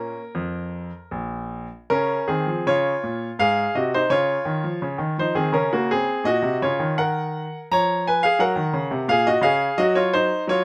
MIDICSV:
0, 0, Header, 1, 2, 480
1, 0, Start_track
1, 0, Key_signature, -5, "major"
1, 0, Tempo, 770218
1, 1176, Time_signature, 3, 2, 24, 8
1, 1657, Tempo, 720288
1, 5017, Tempo, 696864
1, 7043, End_track
2, 0, Start_track
2, 0, Title_t, "Grand piano"
2, 0, Program_c, 0, 0
2, 0, Note_on_c, 0, 46, 64
2, 0, Note_on_c, 0, 58, 50
2, 0, Note_on_c, 0, 61, 49
2, 0, Note_on_c, 0, 70, 90
2, 75, Note_off_c, 0, 46, 0
2, 121, Note_off_c, 0, 58, 0
2, 124, Note_off_c, 0, 61, 0
2, 217, Note_on_c, 0, 41, 61
2, 553, Note_off_c, 0, 41, 0
2, 694, Note_on_c, 0, 34, 55
2, 758, Note_off_c, 0, 70, 0
2, 1030, Note_off_c, 0, 34, 0
2, 1184, Note_on_c, 0, 70, 93
2, 1185, Note_on_c, 0, 49, 56
2, 1193, Note_on_c, 0, 61, 67
2, 1355, Note_off_c, 0, 49, 0
2, 1409, Note_off_c, 0, 61, 0
2, 1419, Note_on_c, 0, 68, 66
2, 1420, Note_off_c, 0, 70, 0
2, 1421, Note_on_c, 0, 51, 58
2, 1429, Note_on_c, 0, 60, 53
2, 1535, Note_off_c, 0, 51, 0
2, 1536, Note_on_c, 0, 53, 57
2, 1647, Note_off_c, 0, 60, 0
2, 1650, Note_off_c, 0, 53, 0
2, 1659, Note_off_c, 0, 68, 0
2, 1662, Note_on_c, 0, 49, 62
2, 1665, Note_on_c, 0, 73, 86
2, 1674, Note_on_c, 0, 65, 65
2, 1837, Note_off_c, 0, 49, 0
2, 1907, Note_on_c, 0, 46, 55
2, 2072, Note_off_c, 0, 73, 0
2, 2076, Note_off_c, 0, 46, 0
2, 2122, Note_off_c, 0, 65, 0
2, 2145, Note_on_c, 0, 44, 60
2, 2147, Note_on_c, 0, 77, 94
2, 2154, Note_on_c, 0, 68, 73
2, 2313, Note_off_c, 0, 44, 0
2, 2367, Note_off_c, 0, 68, 0
2, 2380, Note_off_c, 0, 77, 0
2, 2385, Note_on_c, 0, 48, 58
2, 2386, Note_on_c, 0, 75, 72
2, 2398, Note_on_c, 0, 66, 56
2, 2499, Note_off_c, 0, 66, 0
2, 2500, Note_off_c, 0, 75, 0
2, 2514, Note_on_c, 0, 72, 87
2, 2522, Note_on_c, 0, 63, 67
2, 2554, Note_off_c, 0, 48, 0
2, 2616, Note_on_c, 0, 49, 57
2, 2618, Note_on_c, 0, 73, 86
2, 2621, Note_off_c, 0, 63, 0
2, 2624, Note_off_c, 0, 72, 0
2, 2630, Note_on_c, 0, 65, 65
2, 2787, Note_off_c, 0, 49, 0
2, 2853, Note_on_c, 0, 51, 60
2, 2965, Note_off_c, 0, 51, 0
2, 2976, Note_on_c, 0, 53, 58
2, 3085, Note_off_c, 0, 53, 0
2, 3097, Note_on_c, 0, 49, 59
2, 3204, Note_off_c, 0, 49, 0
2, 3205, Note_on_c, 0, 51, 61
2, 3305, Note_off_c, 0, 65, 0
2, 3318, Note_off_c, 0, 51, 0
2, 3326, Note_off_c, 0, 73, 0
2, 3336, Note_on_c, 0, 53, 53
2, 3346, Note_on_c, 0, 72, 80
2, 3354, Note_on_c, 0, 63, 61
2, 3444, Note_off_c, 0, 53, 0
2, 3450, Note_on_c, 0, 51, 56
2, 3452, Note_off_c, 0, 63, 0
2, 3453, Note_on_c, 0, 68, 69
2, 3455, Note_off_c, 0, 72, 0
2, 3464, Note_on_c, 0, 60, 58
2, 3562, Note_off_c, 0, 51, 0
2, 3567, Note_off_c, 0, 60, 0
2, 3567, Note_on_c, 0, 49, 58
2, 3569, Note_off_c, 0, 68, 0
2, 3574, Note_on_c, 0, 70, 81
2, 3577, Note_on_c, 0, 61, 66
2, 3684, Note_off_c, 0, 61, 0
2, 3690, Note_off_c, 0, 70, 0
2, 3702, Note_on_c, 0, 66, 69
2, 3708, Note_on_c, 0, 58, 55
2, 3809, Note_off_c, 0, 58, 0
2, 3814, Note_off_c, 0, 66, 0
2, 3824, Note_on_c, 0, 68, 85
2, 3829, Note_on_c, 0, 60, 60
2, 3912, Note_off_c, 0, 49, 0
2, 4040, Note_off_c, 0, 60, 0
2, 4043, Note_on_c, 0, 46, 62
2, 4052, Note_on_c, 0, 75, 93
2, 4053, Note_off_c, 0, 68, 0
2, 4060, Note_on_c, 0, 66, 73
2, 4158, Note_off_c, 0, 46, 0
2, 4166, Note_on_c, 0, 48, 59
2, 4257, Note_off_c, 0, 75, 0
2, 4281, Note_off_c, 0, 66, 0
2, 4284, Note_off_c, 0, 48, 0
2, 4298, Note_on_c, 0, 49, 61
2, 4300, Note_on_c, 0, 73, 79
2, 4312, Note_on_c, 0, 65, 56
2, 4413, Note_off_c, 0, 49, 0
2, 4413, Note_on_c, 0, 51, 58
2, 4507, Note_off_c, 0, 73, 0
2, 4533, Note_off_c, 0, 65, 0
2, 4537, Note_on_c, 0, 78, 92
2, 4542, Note_on_c, 0, 70, 65
2, 4845, Note_off_c, 0, 51, 0
2, 4942, Note_off_c, 0, 78, 0
2, 4990, Note_off_c, 0, 70, 0
2, 5026, Note_on_c, 0, 53, 62
2, 5027, Note_on_c, 0, 82, 103
2, 5037, Note_on_c, 0, 73, 78
2, 5252, Note_off_c, 0, 73, 0
2, 5264, Note_off_c, 0, 82, 0
2, 5275, Note_on_c, 0, 80, 85
2, 5281, Note_on_c, 0, 71, 60
2, 5368, Note_off_c, 0, 53, 0
2, 5381, Note_off_c, 0, 71, 0
2, 5381, Note_on_c, 0, 77, 96
2, 5386, Note_off_c, 0, 80, 0
2, 5397, Note_on_c, 0, 68, 71
2, 5492, Note_on_c, 0, 54, 64
2, 5498, Note_off_c, 0, 68, 0
2, 5498, Note_off_c, 0, 77, 0
2, 5499, Note_on_c, 0, 78, 92
2, 5505, Note_on_c, 0, 70, 68
2, 5606, Note_off_c, 0, 54, 0
2, 5608, Note_on_c, 0, 51, 62
2, 5723, Note_off_c, 0, 51, 0
2, 5728, Note_on_c, 0, 49, 62
2, 5843, Note_off_c, 0, 49, 0
2, 5850, Note_on_c, 0, 48, 61
2, 5947, Note_off_c, 0, 70, 0
2, 5964, Note_off_c, 0, 48, 0
2, 5968, Note_on_c, 0, 46, 71
2, 5972, Note_off_c, 0, 78, 0
2, 5974, Note_on_c, 0, 77, 96
2, 5988, Note_on_c, 0, 68, 77
2, 6091, Note_off_c, 0, 68, 0
2, 6092, Note_off_c, 0, 77, 0
2, 6097, Note_on_c, 0, 75, 96
2, 6105, Note_on_c, 0, 66, 65
2, 6142, Note_off_c, 0, 46, 0
2, 6197, Note_on_c, 0, 49, 65
2, 6206, Note_on_c, 0, 77, 90
2, 6210, Note_off_c, 0, 66, 0
2, 6213, Note_off_c, 0, 75, 0
2, 6218, Note_on_c, 0, 68, 71
2, 6375, Note_off_c, 0, 49, 0
2, 6438, Note_off_c, 0, 68, 0
2, 6447, Note_on_c, 0, 54, 67
2, 6448, Note_on_c, 0, 75, 96
2, 6449, Note_off_c, 0, 77, 0
2, 6460, Note_on_c, 0, 66, 74
2, 6568, Note_off_c, 0, 66, 0
2, 6569, Note_on_c, 0, 73, 83
2, 6571, Note_off_c, 0, 75, 0
2, 6577, Note_on_c, 0, 65, 65
2, 6688, Note_off_c, 0, 65, 0
2, 6692, Note_off_c, 0, 73, 0
2, 6693, Note_on_c, 0, 72, 95
2, 6700, Note_on_c, 0, 63, 71
2, 6797, Note_off_c, 0, 54, 0
2, 6899, Note_off_c, 0, 72, 0
2, 6922, Note_off_c, 0, 63, 0
2, 6927, Note_on_c, 0, 54, 66
2, 6940, Note_on_c, 0, 73, 87
2, 6949, Note_on_c, 0, 65, 62
2, 7043, Note_off_c, 0, 54, 0
2, 7043, Note_off_c, 0, 65, 0
2, 7043, Note_off_c, 0, 73, 0
2, 7043, End_track
0, 0, End_of_file